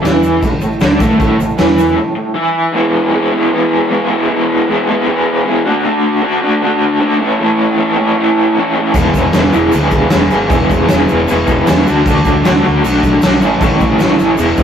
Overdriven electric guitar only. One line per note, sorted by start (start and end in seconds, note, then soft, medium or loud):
0.02 0.41 E3 medium
0.02 0.42 E4 medium
0.43 0.58 A2 medium
0.63 0.78 A2 medium
0.81 1.00 D3 medium
0.81 1.01 D4 loud
1.00 1.17 A2 medium
1.00 1.19 A3 loud
1.18 1.38 A2 medium
1.18 1.39 A3 loud
1.39 1.55 A2 medium
1.58 1.96 E3 medium
1.58 1.98 E4 loud
1.96 2.13 A2 medium
2.16 2.32 A2 medium
2.34 2.72 E3 medium
2.34 2.74 E4 loud
2.73 3.11 E3 medium
2.73 3.13 G#3 loud
2.73 3.14 B3 loud
2.73 3.15 E4 medium
3.12 3.50 E3 medium
3.12 3.35 G#3 medium
3.12 3.33 B3 medium
3.16 3.31 E4 medium
3.32 3.52 G#3 medium
3.32 3.52 B3 medium
3.32 3.53 E4 medium
3.51 3.88 E3 medium
3.51 3.90 G#3 medium
3.51 3.91 B3 medium
3.51 3.92 E4 medium
3.89 4.27 E3 loud
3.89 4.11 G#3 loud
3.89 4.09 B3 medium
3.93 4.08 E4 loud
4.09 4.29 G#3 medium
4.09 4.30 B3 medium
4.09 4.31 E4 medium
4.28 4.67 E3 medium
4.28 4.68 G#3 loud
4.28 4.69 B3 loud
4.28 4.70 E4 medium
4.68 5.05 E3 medium
4.68 4.91 G#3 medium
4.68 4.89 B3 medium
4.68 4.87 E4 medium
4.88 5.07 G#3 medium
4.88 5.08 B3 medium
4.88 5.09 E4 medium
5.07 5.43 E3 medium
5.07 5.45 G#3 medium
5.07 5.47 B3 medium
5.07 5.48 E4 medium
5.45 5.64 E3 loud
5.45 5.64 G#3 loud
5.45 5.65 B3 loud
5.49 5.65 E4 loud
5.65 5.85 A3 medium
5.65 5.85 D4 medium
5.65 5.86 F#4 medium
5.69 5.83 D3 medium
5.84 6.21 D3 medium
5.84 6.23 A3 medium
5.84 6.23 D4 loud
5.84 6.24 F#4 loud
6.22 6.60 D3 medium
6.22 6.45 A3 medium
6.22 6.42 D4 medium
6.22 6.41 F#4 medium
6.42 6.62 A3 medium
6.42 6.62 D4 medium
6.42 6.64 F#4 medium
6.61 6.99 D3 medium
6.61 7.00 A3 medium
6.61 7.01 D4 medium
6.61 7.03 F#4 medium
7.00 7.19 D3 medium
7.00 7.20 A3 loud
7.00 7.20 D4 loud
7.04 7.19 F#4 loud
7.19 7.39 E3 medium
7.19 7.40 A3 medium
7.19 7.40 C#4 medium
7.19 7.42 E4 medium
7.24 7.38 A2 medium
7.39 7.98 A2 medium
7.39 7.76 E3 medium
7.39 7.78 A3 medium
7.39 7.79 C#4 medium
7.39 7.80 E4 loud
7.77 8.16 E3 medium
7.77 7.98 A3 medium
7.77 7.97 C#4 medium
7.77 7.96 E4 medium
7.96 8.17 A3 medium
7.96 8.18 C#4 medium
7.96 8.20 E4 medium
8.16 8.57 E3 medium
8.16 8.57 A3 medium
8.16 8.57 C#4 medium
8.20 8.60 E4 loud
8.57 8.94 A2 medium
8.57 8.93 E3 loud
8.57 8.77 A3 loud
8.57 8.75 C#4 loud
8.57 8.74 E4 loud
8.75 8.95 A3 medium
8.75 8.95 C#4 medium
8.75 8.97 E4 medium
8.93 9.33 E3 medium
8.93 9.34 G#3 medium
8.93 9.36 B3 loud
8.97 9.37 E4 loud
9.33 9.72 E3 medium
9.33 9.55 G#3 medium
9.33 9.54 B3 medium
9.38 9.51 E4 medium
9.52 9.73 G#3 medium
9.52 9.75 B3 medium
9.52 9.76 E4 medium
9.73 10.09 E3 medium
9.73 10.10 G#3 medium
9.73 10.12 B3 medium
9.73 10.13 E4 medium
10.10 10.48 E3 loud
10.10 10.33 G#3 loud
10.10 10.31 B3 loud
10.10 10.29 E4 loud
10.30 10.50 G#3 medium
10.30 10.51 B3 medium
10.30 10.52 E4 medium
10.50 10.87 E3 medium
10.50 10.88 G#3 medium
10.50 10.89 B3 loud
10.50 10.90 E4 loud
10.88 11.27 E3 medium
10.88 11.10 G#3 medium
10.88 11.09 B3 medium
10.88 11.07 E4 medium
11.08 11.28 G#3 medium
11.08 11.30 B3 medium
11.08 11.30 E4 medium
11.28 11.65 E3 medium
11.28 11.66 G#3 medium
11.28 11.67 B3 medium
11.28 11.68 E4 medium
11.66 11.85 E3 medium
11.66 11.85 G#3 loud
11.66 11.86 B3 loud
11.66 11.86 E4 loud
11.87 12.06 A3 medium
11.87 12.08 D4 medium
11.87 12.09 F#4 medium
11.91 12.05 D3 medium
12.06 12.43 D3 loud
12.06 12.44 A3 loud
12.06 12.45 D4 loud
12.06 12.46 F#4 loud
12.44 12.81 D3 medium
12.44 12.65 A3 medium
12.44 12.65 D4 medium
12.44 12.62 F#4 medium
12.63 12.83 A3 medium
12.63 12.84 D4 medium
12.63 12.85 F#4 medium
12.82 13.20 D3 medium
12.82 13.22 A3 medium
12.82 13.22 D4 medium
12.82 13.24 F#4 medium
13.21 13.40 D3 loud
13.21 13.41 A3 loud
13.21 13.41 D4 loud
13.26 13.40 F#4 loud
13.41 13.58 A2 medium
13.41 13.59 E3 medium
13.41 13.60 A3 medium
13.41 13.61 C#4 medium
13.41 13.63 E4 medium
13.59 14.19 A2 loud
13.59 13.97 E3 medium
13.59 13.99 A3 medium
13.59 14.00 C#4 loud
13.64 14.01 E4 loud
13.98 14.34 E3 medium
13.98 14.20 A3 medium
13.98 14.18 C#4 medium
14.03 14.15 E4 medium
14.17 14.37 C#4 medium
14.17 14.36 E4 medium
14.21 14.37 A3 medium
14.35 14.63 E3 medium
14.35 14.63 G#3 loud
14.35 14.63 B3 loud
14.40 14.63 E4 loud